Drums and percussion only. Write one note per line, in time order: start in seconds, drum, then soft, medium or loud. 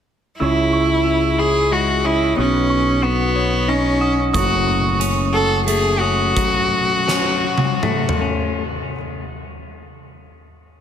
4.34 kick medium
4.34 closed hi-hat soft
5.01 closed hi-hat soft
5.68 closed hi-hat soft
6.37 kick medium
6.37 closed hi-hat soft
7.08 snare soft
7.58 high tom medium
7.83 mid tom medium
8.09 mid tom medium